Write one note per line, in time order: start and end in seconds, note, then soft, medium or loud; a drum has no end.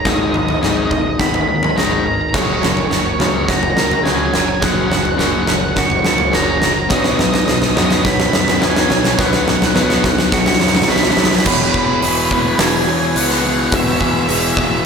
0.00 2.30 G#3 medium
0.00 0.34 B3 medium
0.00 0.33 D#4 medium
0.00 2.31 D#4 medium
0.00 2.30 G#4 medium
0.00 1.22 A#4 medium
0.00 0.34 C#5 medium
0.05 0.54 G#1 medium
0.05 0.32 G#2 medium
0.05 0.33 D#3 medium
0.05 0.33 G#3 loud
0.05 0.61 G#3 medium
0.05 0.13 D#5 medium
0.05 kick loud
0.05 snare medium
0.05 floor tom medium
0.14 0.21 D#5 medium
0.21 0.29 D#5 medium
0.30 0.59 G#2 medium
0.30 0.60 D#3 medium
0.30 0.37 D#5 medium
0.30 mid tom medium
0.34 0.89 D#4 medium
0.34 0.45 D#5 medium
0.45 0.52 D#5 medium
0.45 floor tom medium
0.53 0.60 D#5 medium
0.61 0.87 G#1 medium
0.61 0.89 G#2 medium
0.61 0.89 D#3 medium
0.61 0.89 G#3 medium
0.61 2.06 G#3 medium
0.61 0.68 D#5 medium
0.61 snare medium
0.61 mid tom medium
0.68 0.76 D#5 medium
0.77 0.85 D#5 medium
0.85 0.92 D#5 medium
0.91 1.16 G#1 medium
0.91 1.17 G#2 medium
0.91 1.17 D#3 medium
0.91 1.75 D#4 medium
0.91 1.00 D#5 medium
0.91 kick medium
0.91 floor tom medium
1.02 1.07 D#5 medium
1.08 1.16 D#5 medium
1.19 1.44 G#1 medium
1.19 1.45 G#2 medium
1.19 1.45 D#3 medium
1.19 2.34 B3 medium
1.19 1.26 B5 medium
1.19 kick loud
1.19 snare medium
1.26 1.34 B5 medium
1.34 1.41 B5 medium
1.34 floor tom medium
1.41 1.48 B5 medium
1.48 1.72 D#2 medium
1.48 1.74 G#2 medium
1.48 1.75 D#3 medium
1.48 2.04 A#4 medium
1.48 1.56 B5 medium
1.56 1.63 B5 medium
1.63 1.70 B5 medium
1.63 floor tom medium
1.63 mid tom medium
1.70 1.77 B5 medium
1.76 2.01 G#1 medium
1.76 2.03 G#2 medium
1.76 2.03 D#3 medium
1.76 2.04 G#3 medium
1.76 2.34 D#4 medium
1.76 1.84 A#5 medium
1.76 snare medium
1.85 1.91 A#5 medium
1.91 1.99 A#5 medium
1.99 2.07 A#5 medium
2.04 2.34 G#1 medium
2.04 2.31 G#2 medium
2.04 2.31 D#3 medium
2.04 3.76 A#4 medium
2.04 2.14 A#5 medium
2.14 2.21 A#5 medium
2.21 2.29 A#5 medium
2.30 2.60 F#2 medium
2.30 4.62 F#3 medium
2.30 6.86 A#3 medium
2.30 4.59 C#4 medium
2.30 6.86 F#4 medium
2.30 2.37 A#5 medium
2.34 2.58 F#1 medium
2.34 2.60 C#3 medium
2.34 2.61 F#3 loud
2.34 2.62 C#5 medium
2.34 2.41 C#5 medium
2.34 kick loud
2.34 snare medium
2.34 floor tom medium
2.34 crash medium
2.42 2.49 C#5 medium
2.49 2.57 C#5 medium
2.57 2.88 F#2 medium
2.57 2.65 C#5 medium
2.62 2.87 F#1 medium
2.62 2.88 C#3 medium
2.62 3.19 C#4 medium
2.62 3.20 A#4 medium
2.62 2.72 C#5 medium
2.62 snare medium
2.62 mid tom medium
2.72 2.80 C#5 medium
2.77 2.88 C#5 medium
2.77 floor tom medium
2.89 3.15 F#1 medium
2.89 3.17 F#2 medium
2.89 3.17 C#3 medium
2.89 4.34 A#3 medium
2.89 2.96 C#5 medium
2.89 snare medium
2.97 3.04 C#5 medium
3.04 3.11 C#5 medium
3.12 3.19 C#5 medium
3.19 3.44 C#2 medium
3.19 3.46 F#2 medium
3.19 3.47 C#3 medium
3.19 3.47 F#3 medium
3.19 4.06 C#4 medium
3.19 3.27 C#5 medium
3.19 snare medium
3.19 floor tom medium
3.19 mid tom medium
3.28 3.35 C#5 medium
3.35 3.43 C#5 medium
3.44 5.76 F#4 medium
3.44 3.52 C#5 medium
3.48 3.73 F#1 medium
3.48 3.74 F#2 medium
3.48 3.75 C#3 medium
3.48 3.77 C#5 medium
3.48 3.55 A#5 medium
3.48 kick loud
3.48 snare medium
3.55 3.63 A#5 medium
3.63 3.70 A#5 medium
3.63 floor tom medium
3.70 3.78 A#5 medium
3.76 4.01 C#2 medium
3.76 4.02 F#2 medium
3.76 4.02 C#3 medium
3.76 4.34 A#4 medium
3.76 4.33 A#4 medium
3.76 3.86 A#5 medium
3.76 snare medium
3.86 3.93 A#5 medium
3.91 4.01 A#5 medium
3.91 floor tom medium
4.03 4.30 C#2 medium
4.03 4.31 F#2 medium
4.03 4.32 C#3 medium
4.03 4.32 F#3 medium
4.03 4.91 C#4 medium
4.03 4.10 G#5 medium
4.03 snare medium
4.11 4.18 G#5 medium
4.19 4.25 G#5 medium
4.25 4.33 G#5 medium
4.32 4.59 F#1 medium
4.32 4.59 F#2 medium
4.32 4.59 C#3 medium
4.32 5.77 A#4 medium
4.32 4.91 C#5 medium
4.32 4.40 G#5 medium
4.32 snare medium
4.40 4.48 G#5 medium
4.49 4.55 G#5 medium
4.55 4.63 G#5 medium
4.60 5.11 F#1 medium
4.60 4.88 F#2 loud
4.60 4.89 C#3 medium
4.60 4.89 F#3 loud
4.60 8.12 F#3 medium
4.60 11.42 D#4 medium
4.60 4.71 F#5 medium
4.60 kick loud
4.60 snare medium
4.60 floor tom medium
4.71 4.79 F#5 medium
4.79 4.86 F#5 medium
4.86 4.94 F#5 medium
4.91 5.15 F#2 medium
4.91 5.16 C#3 medium
4.91 5.47 C#4 medium
4.91 5.02 F#5 medium
4.91 snare medium
4.91 mid tom medium
5.02 5.10 F#5 medium
5.02 floor tom medium
5.11 5.18 F#5 medium
5.17 5.44 F#1 medium
5.17 5.45 F#2 medium
5.17 5.45 C#3 medium
5.17 5.46 F#3 medium
5.17 6.63 A#3 medium
5.17 5.77 A#4 medium
5.17 5.26 F#5 medium
5.17 snare medium
5.26 5.32 F#5 medium
5.33 5.41 F#5 medium
5.42 5.49 F#5 medium
5.46 5.74 F#1 medium
5.46 5.73 F#2 medium
5.46 5.73 C#3 medium
5.46 6.33 C#4 medium
5.46 5.57 F#5 medium
5.46 snare medium
5.46 floor tom medium
5.46 mid tom medium
5.58 5.64 F#5 medium
5.64 5.72 F#5 medium
5.73 6.01 F#1 medium
5.73 6.01 F#2 medium
5.73 6.02 C#3 medium
5.73 8.04 F#4 medium
5.73 5.81 F#5 medium
5.73 kick loud
5.73 snare medium
5.77 5.85 C#6 medium
5.85 5.91 C#6 medium
5.90 5.99 C#6 medium
5.90 floor tom medium
5.99 6.29 F#2 medium
5.99 6.30 C#3 medium
5.99 6.05 C#6 medium
6.05 6.31 C#2 medium
6.05 6.61 A#4 medium
6.05 6.13 C#6 medium
6.05 snare medium
6.14 6.21 C#6 medium
6.18 6.28 C#6 medium
6.18 floor tom medium
6.29 6.59 F#2 medium
6.29 6.60 C#3 loud
6.29 6.60 F#3 loud
6.29 6.34 C#6 medium
6.33 6.59 F#1 medium
6.33 6.94 C#4 medium
6.33 6.91 A#4 medium
6.33 6.42 A#5 medium
6.33 snare medium
6.42 6.49 A#5 medium
6.49 6.57 A#5 medium
6.58 6.87 F#2 medium
6.58 6.87 C#3 medium
6.58 6.65 A#5 medium
6.62 6.87 F#1 medium
6.62 6.91 A#4 medium
6.62 6.73 A#5 medium
6.62 snare medium
6.73 6.78 A#5 medium
6.79 6.86 A#5 medium
6.89 7.15 B1 medium
6.89 7.16 B2 loud
6.89 7.16 F#3 loud
6.89 7.17 B3 loud
6.89 7.48 B3 medium
6.89 11.43 B3 medium
6.89 11.43 C#4 medium
6.89 7.19 C#5 medium
6.89 6.98 D#5 medium
6.89 kick loud
6.89 snare loud
6.89 floor tom medium
6.99 7.06 D#5 medium
7.04 7.13 D#5 medium
7.04 snare medium
7.14 7.44 B2 medium
7.14 7.44 F#3 medium
7.14 7.22 D#5 medium
7.19 7.44 B1 medium
7.19 7.75 D#4 medium
7.19 7.77 B4 medium
7.19 7.29 D#5 medium
7.19 snare loud
7.19 mid tom medium
7.30 7.37 D#5 medium
7.34 7.45 D#5 medium
7.34 snare medium
7.34 floor tom medium
7.45 7.72 B1 medium
7.45 7.72 B2 medium
7.45 7.73 F#3 medium
7.45 8.93 B3 medium
7.45 7.52 D#5 medium
7.45 snare medium
7.53 7.60 D#5 medium
7.61 7.68 D#5 medium
7.61 snare loud
7.68 7.76 D#5 medium
7.74 8.01 F#2 loud
7.74 8.02 B2 medium
7.74 8.03 F#3 medium
7.74 8.03 B3 loud
7.74 8.60 D#4 medium
7.74 7.85 D#5 medium
7.74 snare loud
7.74 floor tom medium
7.74 mid tom medium
7.85 7.93 D#5 medium
7.91 7.99 D#5 medium
7.91 snare loud
7.99 8.30 B2 medium
7.99 8.07 D#5 medium
8.04 8.29 B1 loud
8.04 8.30 F#3 medium
8.04 9.47 F#4 medium
8.04 8.33 C#5 medium
8.04 8.11 B5 loud
8.04 kick loud
8.04 snare medium
8.11 8.19 B5 medium
8.20 8.26 B5 medium
8.20 snare loud
8.20 floor tom medium
8.27 8.34 B5 medium
8.32 8.58 F#2 medium
8.32 8.58 B2 medium
8.32 8.59 F#3 medium
8.32 8.90 B4 medium
8.32 8.89 C#5 medium
8.32 8.41 B5 medium
8.32 snare loud
8.41 8.49 B5 medium
8.48 8.55 B5 medium
8.48 snare loud
8.48 floor tom medium
8.55 8.87 B2 medium
8.55 8.63 B5 medium
8.60 8.86 F#2 medium
8.60 8.88 F#3 medium
8.60 8.88 B3 loud
8.60 9.46 D#4 medium
8.60 8.68 G#5 medium
8.60 snare loud
8.68 8.75 G#5 medium
8.76 8.83 G#5 medium
8.76 snare loud
8.84 8.91 G#5 medium
8.89 9.15 B1 medium
8.89 9.15 B2 medium
8.89 9.16 F#3 medium
8.89 9.47 C#5 medium
8.89 10.33 C#5 medium
8.89 8.97 G#5 medium
8.89 snare loud
8.97 9.04 G#5 medium
9.04 9.12 G#5 medium
9.04 snare loud
9.14 9.44 B2 loud
9.14 9.45 F#3 loud
9.14 9.45 B3 loud
9.14 9.19 G#5 medium
9.18 9.68 B1 medium
9.18 9.75 B3 medium
9.18 9.26 F#5 medium
9.18 kick loud
9.18 snare loud
9.18 floor tom medium
9.27 9.33 F#5 medium
9.33 9.41 F#5 medium
9.33 snare loud
9.43 9.72 B2 medium
9.43 9.73 F#3 medium
9.43 9.49 F#5 medium
9.48 10.04 D#4 medium
9.48 9.57 F#5 medium
9.48 snare loud
9.48 mid tom medium
9.57 9.65 F#5 medium
9.62 snare loud
9.62 floor tom medium
9.66 9.74 F#5 medium
9.74 10.01 B1 loud
9.74 10.02 B2 medium
9.74 10.02 F#3 loud
9.74 10.02 B3 medium
9.74 11.18 B3 medium
9.74 10.33 B4 medium
9.74 9.82 F#5 medium
9.74 snare loud
9.74 mid tom medium
9.83 9.89 F#5 medium
9.89 9.97 F#5 medium
9.89 snare loud
9.98 10.04 F#5 medium
10.04 10.29 B1 medium
10.04 10.30 B2 medium
10.04 10.30 F#3 medium
10.04 10.88 D#4 medium
10.04 10.12 F#5 medium
10.04 kick medium
10.04 snare loud
10.04 floor tom medium
10.12 10.20 F#5 medium
10.18 10.29 F#5 medium
10.18 snare loud
10.29 10.57 B1 loud
10.29 10.58 B2 medium
10.29 10.58 F#3 loud
10.29 11.47 F#4 medium
10.29 10.37 F#5 medium
10.29 10.39 C#6 loud
10.29 kick loud
10.29 snare loud
10.40 10.46 C#6 medium
10.46 10.54 C#6 medium
10.46 snare loud
10.46 floor tom medium
10.53 10.61 C#6 medium
10.53 snare loud
10.60 10.86 F#2 medium
10.60 10.86 B2 medium
10.60 10.87 F#3 medium
10.60 11.17 C#5 medium
10.60 10.68 C#6 loud
10.60 snare loud
10.67 10.76 C#6 medium
10.67 snare loud
10.75 10.83 C#6 medium
10.75 snare loud
10.75 floor tom medium
10.75 mid tom medium
10.82 10.89 C#6 medium
10.82 snare loud
10.88 11.14 B1 loud
10.88 11.16 B2 medium
10.88 11.16 F#3 medium
10.88 11.16 B3 loud
10.88 11.46 D#4 medium
10.88 11.47 B4 medium
10.88 10.97 B5 medium
10.88 snare loud
10.96 11.03 B5 medium
10.96 snare loud
11.03 11.11 B5 medium
11.03 snare loud
11.10 11.19 B5 medium
11.10 snare loud
11.17 11.47 B1 medium
11.17 11.44 B2 medium
11.17 11.44 F#3 medium
11.17 11.46 C#5 medium
11.17 11.27 B5 medium
11.17 snare loud
11.24 11.35 B5 medium
11.24 snare loud
11.31 11.43 B5 medium
11.31 snare loud
11.39 snare loud
11.45 11.71 E1 medium
11.45 12.02 E2 loud
11.45 12.02 B2 loud
11.45 14.86 E3 medium
11.45 12.04 E3 loud
11.45 14.86 E4 medium
11.45 14.86 G#4 medium
11.45 14.86 B4 medium
11.45 11.54 B4 medium
11.45 12.03 C#5 medium
11.45 kick loud
11.45 crash loud
11.54 11.62 B4 medium
11.62 11.70 B4 medium
11.70 12.00 E1 medium
11.70 11.78 B4 medium
11.70 kick medium
11.78 11.85 B4 medium
11.85 11.93 B4 medium
11.94 12.01 B4 medium
12.01 12.53 E1 medium
12.01 12.30 E2 medium
12.01 12.30 B2 medium
12.01 12.31 E3 medium
12.01 12.09 B4 medium
12.01 open hi-hat medium
12.09 12.17 B4 medium
12.17 12.24 B4 medium
12.25 12.32 B4 medium
12.30 12.58 E2 medium
12.30 12.58 B2 medium
12.30 12.59 E3 loud
12.30 12.88 B4 medium
12.30 12.40 B4 medium
12.30 kick medium
12.41 12.48 B4 medium
12.48 12.55 B4 medium
12.56 12.84 E1 loud
12.56 13.15 E2 loud
12.56 13.15 B2 loud
12.56 12.63 B4 medium
12.56 snare loud
12.56 open hi-hat medium
12.60 13.15 E3 loud
12.60 12.67 G#5 loud
12.67 12.75 G#5 medium
12.76 12.82 G#5 loud
12.82 12.89 G#5 medium
12.87 13.13 E2 medium
12.87 13.44 C#5 medium
12.87 12.97 G#5 loud
12.98 13.05 G#5 medium
13.05 13.13 G#5 medium
13.16 13.67 C#2 medium
13.16 13.43 E2 medium
13.16 13.44 B2 medium
13.16 13.44 E3 loud
13.16 13.23 F#5 loud
13.16 open hi-hat medium
13.24 13.31 F#5 medium
13.30 13.37 F#5 medium
13.30 snare soft
13.38 13.45 F#5 medium
13.43 13.72 E2 medium
13.43 13.73 B2 loud
13.43 13.74 E3 loud
13.43 14.01 B4 medium
13.43 13.53 F#5 medium
13.54 13.59 F#5 medium
13.60 13.67 F#5 medium
13.68 13.75 F#5 medium
13.72 13.98 E1 medium
13.72 14.27 E2 loud
13.72 14.28 B2 loud
13.72 14.29 E3 loud
13.72 13.82 E5 medium
13.72 kick loud
13.72 open hi-hat medium
13.83 13.90 E5 medium
13.91 13.98 E5 medium
13.99 14.26 E2 medium
13.99 14.06 E5 medium
13.99 kick medium
14.06 14.14 E5 medium
14.14 14.21 E5 medium
14.21 14.29 E5 medium
14.28 14.54 E1 medium
14.28 14.55 E2 medium
14.28 14.56 B2 medium
14.28 14.57 E3 medium
14.28 14.85 B4 medium
14.28 14.37 E5 medium
14.28 open hi-hat medium
14.38 14.45 E5 medium
14.45 14.53 E5 medium
14.54 14.82 E1 loud
14.54 14.84 E2 medium
14.54 14.85 B2 medium
14.54 14.61 E5 medium
14.54 kick loud
14.58 14.85 E3 medium
14.58 14.69 E5 medium
14.69 14.76 E5 medium
14.77 14.85 E5 medium